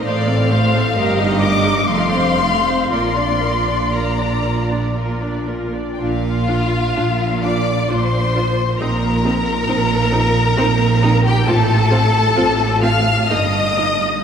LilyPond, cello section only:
\new Staff \with { instrumentName = "Cello section" } { \clef bass \time 3/4 \key bes \major \tempo 4 = 65 a,4 g,4 f,4 | bes,2. | bes,4 bes,4 bes,4 | bes,4 bes,4 bes,4 |
a,4 a,4 g,4 | }